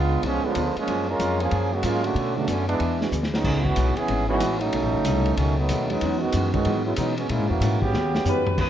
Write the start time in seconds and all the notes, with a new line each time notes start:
Already playing: C#2 C#3 G#3 B3 D4 F4
0.22 B1 C#3 F3 G#3 B3 C#4 D4, ride
0.26 F4
0.44 D3 F3 G#3 B3 C#4 D4 F4
0.55 D2 C#3 B3 D4 F4, hi-hat pedal, ride
0.76 F3 G#3 A#3 C#4, muted upright bass stroke, ride
0.87 F#2 F#3 A#3 F4, ride
0.91 G#4
1.08 G#3 C#4 F4 A#4
1.19 F2 F#3 A#3 F4 G#4, hi-hat pedal, ride
1.40 F3 A#3 C#4 G#4, ride
1.51 F#2 F#3 A#3 F4 G#4, ride
1.74 C#3 G#3 A#3 F#4
1.83 G#2 F#3 G#3 A#3 C#4 F4 G#4, hi-hat pedal, ride
2.04 D3 A3 C#4 F#4, ride
2.15 B2 B3 D4 A4 C#5, ride
2.36 C#3 D3 F#3 A3 B3 C#4 D4 F#4
2.47 F#2 D3 F#3 A3 B3 C#4 D4 A4 C#5, hi-hat pedal, ride
2.68 E3 G#3 B3 D4, ride
2.80 E2 E3 B3 D4, ride
2.84 G#4
3.01 E3 G#3 B3 D4 F#4, snare
3.11 D2 E3 B3 D4 G#4, hi-hat pedal
3.23 snare
3.32 G#3 B3 C#4 D#4, snare
3.44 C#2 A2 G#3 C#4 D#4, kick, crash
3.64 E3 B3 C#4 F#4, kick
3.76 B1 A2 G#3 C#4 D#4, hi-hat pedal, ride
3.96 E3 B3 C#4 G#4, muted upright bass stroke, ride
4.08 G#1 A2 G#3 C#4, ride
4.12 D#4
4.29 E3 G#3 B3 C#4 D#4 F#4
4.40 A1 A2 G#3 C#4 D#4, hi-hat pedal, ride
4.61 F#3 A3 C#4 D#4, ride
4.73 B1 B2 A3 D#4, ride
4.77 G#4
4.83 A1
4.94 F#1
5.04 C2 B2 A3 D#4 G#4, hi-hat pedal, ride
5.26 ride
5.37 C#2 B2 D#3 F#3 A3 C#4 D#4, ride
5.41 G#4
5.58 D#3 F#3 A3 B3
5.69 D#2 B2 A3 D#4 G#4, hi-hat pedal, ride
5.89 F#3 G#3 B3 C#4 D#4, ride
6.01 E2 E3 G#3 C#4, ride
6.05 D#4
6.21 D#3 G#3 B3 F#4
6.32 F#2 E3 G#3, hi-hat pedal, ride
6.36 C#4 D#4
6.53 D#3 F#3 G#3 B3 C#4 D#4 F#4, kick, ride
6.65 G#2 E3 G#3, ride
6.69 C#4 D#4
6.86 F#3 G#3 B3 E4
6.96 B2 E3 F#3 G#3 B3 D#4, hi-hat pedal, ride
7.01 C#4 D#4
7.18 F#3 G#3 B3 C#4, ride
7.29 A#2 G#3 A#3 C#4 E4, ride
7.33 E4
7.39 G#2
7.49 E2 E3 A#3 C#4 F#4
7.60 G#2 A#2 G#3, hi-hat pedal, ride
7.64 C#4 E4
7.81 C#3 B3 F#4 G4, kick
7.94 D#2 D#3 B3 C#4 G4, snare
8.15 snare
8.25 F#2 D#3 B3 C#4 D#4 F#4 G4 B4, floor tom, hi-hat pedal
8.47 floor tom
8.57 D#2 G#3 B3 F#4 A#4 B4, kick, crash